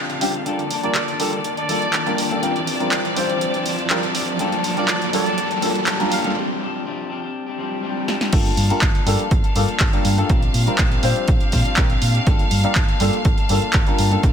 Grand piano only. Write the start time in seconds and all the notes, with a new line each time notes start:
0.21 G3 C4 D4 F4 G4
0.45 G3 A#3 D4 F4 A4
0.83 G3 A#3 D4 F4 A#4
1.19 G3 A#3 D4 F4 A4
1.68 G3 A#3 D4 F4 A4
2.06 G3 A#3 D4 F4 A#4
2.31 G3 A#3 D4 F4 A4
2.42 G3 C4 D4 F4 A#4
2.80 G3 C4 D4 F4 A#4
3.16 G3 C4 D4 F4 C5
3.90 G3 C4 D4 F4 A#4
4.40 G3 A#3 D4 F4 A4
4.77 G3 A#3 D4 F4 A#4
5.13 G3 A#3 D4 F4 A4
5.62 G3 A#3 D4 F4 A4
6.00 G3 A#3 D4 F4 A#4
6.24 G3 A#3 D4 F4 A4
8.33 G3 A#3 D4 F4 A4
8.70 G3 A#3 D4 F4 A#4
9.06 G3 A#3 D4 F4 A4
9.56 G3 A#3 D4 F4 A4
9.93 G3 A#3 D4 F4 A#4
10.18 G3 A#3 D4 F4 A4
10.29 G3
10.67 G3 C4 D4 F4 A#4
11.03 G3 C4 D4 F4 C5
11.77 G3 C4 D4 F4 A#4
12.26 G3 A#3 D4 F4 A4
12.64 G3 A#3 D4 F4 A#4
13.00 G3 A#3 D4 F4 A4
13.50 G3 A#3 D4 F4 A4
13.87 G3 A#3 D4 F4 A#4
14.11 G3 A#3 D4 F4 A4
14.23 G3 C4 F4 A#4